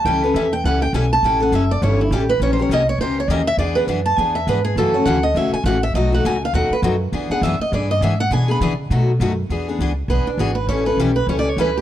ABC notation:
X:1
M:4/4
L:1/8
Q:"Swing" 1/4=203
K:Emix
V:1 name="Steel-string acoustic guitar"
=g B e g f g ^g a | =g f e d c E =G B | (3c =c ^c ^d c =c ^c d e | d B z a g e B G |
A c f ^d e g f e | ^d f g =f ^f B z2 | z f e ^d =d ^d e f | g b z6 |
z4 B D F B | c B =G B (3c d c B G |]
V:2 name="Steel-string acoustic guitar"
[E,=G,CEA] [CEA] [E,G,CEA] z [E,G,CEA] z [E,G,CEA] z | [E,=G,CEA] [CEA] [E,G,CEA] z [E,G,CEA] z [E,G,CEA] z | [E,^A,C=G^A] [CGA] [E,A,CGA] z [E,A,CGA] z [E,A,CGA] z | [E,B,DG] [B,DG] [E,B,DG] z [E,B,DG] z [E,B,DG] z |
[C,E,A,CF] [A,CF] [C,E,A,CF] z [C,E,A,CF] z [C,E,A,CF] z | [B,,F,A,^DF] [A,DF] [B,,F,A,DF] z [B,,F,A,DF] z [B,,F,A,DF] z | [E,B,DG] [B,DG] [E,B,DG] z [E,B,DG] z [E,B,DG] z | [E,B,DG] [B,DG] [E,B,DG] z [B,,F,A,^DF] z [B,,F,A,DF] z |
[E,B,DG] [B,DG] [E,B,DG] z [E,B,DG] z [E,B,DG] z | [E,=G,CEA] [CEA] [E,G,CEA] z [E,G,CEA] z [E,G,CEA] z |]
V:3 name="Upright bass" clef=bass
C,,2 E,,2 C,,2 B,,,2 | A,,,2 F,,,2 =G,,,2 A,,,2 | ^A,,,2 =C,,2 ^C,,2 ^D,,2 | E,,2 F,,2 E,,2 G,,2 |
F,,2 D,,2 C,, z A,,,2 | B,,,2 C,,2 ^D,, z F,,2 | E,, z F,, z =G,,2 ^G,,2 | B,,2 C,2 B,,2 F,,2 |
E,,2 C,,2 B,,, z G,,,2 | A,,,2 B,,,2 C,,2 D,,2 |]